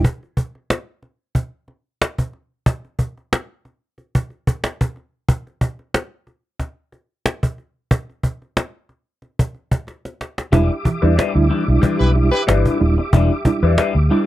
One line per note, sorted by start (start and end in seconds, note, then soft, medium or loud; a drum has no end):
0.04 cajon bass loud
0.23 cajon slap soft
0.37 cajon bass medium
0.55 cajon slap soft
0.70 cajon slap loud
1.03 cajon slap soft
1.35 cajon bass medium
1.35 cajon slap soft
1.68 cajon slap soft
2.02 cajon slap loud
2.18 cajon bass medium
2.33 cajon slap soft
2.66 cajon bass loud
2.85 cajon slap soft
2.99 cajon bass medium
3.17 cajon slap soft
3.33 cajon slap loud
3.65 cajon slap soft
3.98 cajon slap soft
4.15 cajon bass medium
4.30 cajon slap soft
4.47 cajon bass medium
4.47 cajon slap soft
4.64 cajon slap loud
4.81 cajon bass medium
4.96 cajon slap soft
5.29 cajon bass loud
5.47 cajon slap soft
5.61 cajon bass medium
5.79 cajon slap soft
5.94 cajon slap loud
6.27 cajon slap soft
6.59 cajon bass medium
6.59 cajon slap soft
6.92 cajon slap soft
7.26 cajon slap loud
7.43 cajon bass medium
7.58 cajon slap soft
7.91 cajon bass loud
8.10 cajon slap soft
8.23 cajon bass medium
8.42 cajon slap soft
8.57 cajon slap loud
8.89 cajon slap soft
9.22 cajon slap soft
9.39 cajon bass medium
9.54 cajon slap soft
9.71 cajon bass medium
9.71 cajon slap soft
9.87 cajon slap medium
9.87 cajon slap soft
10.05 cajon slap soft
10.21 cajon slap medium
10.38 cajon slap medium
10.52 10.68 E1 loud
10.52 10.70 G3 medium
10.52 10.66 G3 medium
10.52 10.66 D4 medium
10.52 10.70 D4 medium
10.52 10.70 E4 medium
10.52 10.66 E4 loud
10.52 14.26 G4 medium
10.52 10.70 B4 loud
10.52 14.26 E5 medium
10.52 14.26 D6 medium
10.52 cajon bass loud
10.71 cajon slap soft
10.85 10.99 E3 medium
10.85 muted clean electric guitar stroke soft
10.85 muted fingered electric bass stroke soft
10.85 cajon bass medium
11.02 11.16 E2 medium
11.02 11.14 G3 medium
11.02 11.15 G3 medium
11.02 11.15 D4 medium
11.02 11.14 D4 medium
11.02 11.14 E4 medium
11.02 11.15 E4 medium
11.02 11.14 B4 medium
11.02 cajon slap soft
11.17 11.35 G3 medium
11.17 11.34 D4 medium
11.17 11.34 E4 medium
11.17 11.33 B4 loud
11.17 cajon slap loud
11.34 11.49 D2 medium
11.34 11.47 G3 medium
11.34 11.47 D4 medium
11.34 11.47 E4 medium
11.34 muted clean electric guitar stroke soft
11.49 11.64 E3 medium
11.49 11.64 G3 medium
11.49 11.64 D4 medium
11.49 11.64 E4 medium
11.49 11.64 B4 medium
11.49 cajon slap soft
11.66 11.81 B1 medium
11.66 11.80 G3 medium
11.66 11.80 D4 medium
11.66 11.80 E4 medium
11.66 muted clean electric guitar stroke soft
11.81 11.97 E3 medium
11.81 12.12 G3 medium
11.81 12.12 D4 medium
11.81 12.13 E4 medium
11.81 12.13 B4 medium
11.81 muted fingered electric bass stroke soft
11.81 cajon bass loud
11.81 cajon slap medium
11.99 12.29 B1 medium
11.99 12.09 E4 medium
11.99 12.09 G4 medium
11.99 12.09 B4 medium
12.15 12.29 G3 medium
12.15 12.29 D4 medium
12.15 12.29 E4 medium
12.15 muted clean electric guitar stroke soft
12.15 cajon slap soft
12.31 12.41 E4 medium
12.31 12.42 G4 medium
12.31 12.42 B4 loud
12.31 muted clean electric guitar stroke medium
12.47 12.63 G1 medium
12.47 12.61 E3 medium
12.47 12.77 G3 medium
12.47 12.78 D4 medium
12.47 12.78 E4 medium
12.47 12.78 B4 medium
12.47 cajon slap loud
12.66 cajon bass medium
12.80 12.96 D#1 loud
12.80 12.94 G3 medium
12.80 12.94 D4 medium
12.80 12.94 E4 medium
12.80 muted clean electric guitar stroke soft
12.98 13.04 D4 soft
12.98 13.04 E4 soft
12.98 muted clean electric guitar stroke soft
13.13 13.28 E1 loud
13.13 13.26 E3 medium
13.13 13.31 G3 medium
13.13 13.31 D4 loud
13.13 13.31 E4 loud
13.13 13.31 B4 medium
13.13 cajon bass loud
13.31 13.36 D4 medium
13.31 13.36 E4 soft
13.31 cajon slap soft
13.45 13.59 G3 medium
13.45 13.59 D4 medium
13.45 13.59 E4 medium
13.45 muted fingered electric bass stroke soft
13.45 muted clean electric guitar stroke soft
13.45 cajon bass loud
13.63 13.76 E2 loud
13.63 13.75 G3 medium
13.63 13.75 D4 medium
13.63 13.75 E4 medium
13.63 13.75 B4 medium
13.63 cajon slap soft
13.77 13.95 G3 loud
13.77 13.95 D4 loud
13.77 13.94 E4 loud
13.77 13.94 B4 loud
13.77 cajon slap loud
13.95 14.09 D2 medium
13.95 muted clean electric guitar stroke soft
14.10 14.24 G3 medium
14.10 14.24 D4 medium
14.10 14.24 E4 medium
14.10 14.25 E4 medium
14.10 14.25 B4 medium